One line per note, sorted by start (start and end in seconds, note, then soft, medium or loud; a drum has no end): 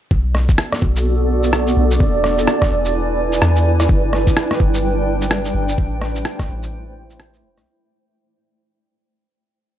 0.11 0.57 B1 loud
0.11 1.98 B3 medium
0.11 7.68 D4 medium
0.11 1.98 F#4 medium
0.11 1.98 A4 medium
0.11 7.68 D5 medium
0.11 3.85 D5 medium
0.11 kick loud
0.35 cross-stick medium
0.49 kick loud
0.49 shaker medium
0.58 cross-stick loud
0.72 cross-stick medium
0.82 1.75 B1 medium
0.82 kick loud
0.96 shaker medium
1.43 shaker medium
1.53 cross-stick loud
1.67 shaker soft
1.77 1.99 B1 medium
1.91 shaker medium
2.00 3.87 E4 medium
2.00 5.74 B4 medium
2.00 3.87 G#5 medium
2.00 kick loud
2.24 cross-stick medium
2.38 shaker medium
2.47 cross-stick loud
2.62 kick loud
2.62 cross-stick medium
2.71 3.41 E1 medium
2.85 shaker medium
3.33 shaker medium
3.42 3.88 E2 medium
3.42 cross-stick loud
3.56 shaker soft
3.80 cross-stick medium
3.80 shaker medium
3.89 4.35 G1 loud
3.89 5.76 G3 medium
3.89 5.76 D4 medium
3.89 7.63 G5 medium
3.89 kick loud
4.13 cross-stick soft
4.27 kick loud
4.27 shaker medium
4.37 cross-stick loud
4.51 cross-stick medium
4.60 5.53 G1 medium
4.60 kick loud
4.74 shaker medium
5.21 shaker medium
5.31 cross-stick loud
5.45 shaker soft
5.54 5.76 G1 medium
5.69 shaker medium
5.78 6.24 A1 medium
5.78 7.65 A3 medium
5.78 7.65 E4 medium
5.78 7.65 C5 medium
5.78 kick loud
6.01 cross-stick medium
6.16 shaker medium
6.25 cross-stick loud
6.39 kick loud
6.39 cross-stick medium
6.39 shaker soft
6.49 7.45 A1 loud
6.63 shaker medium
7.10 shaker medium
7.20 cross-stick loud
7.34 shaker soft
7.43 7.59 E1 medium
7.57 7.66 C2 medium
7.57 cross-stick soft
7.57 shaker medium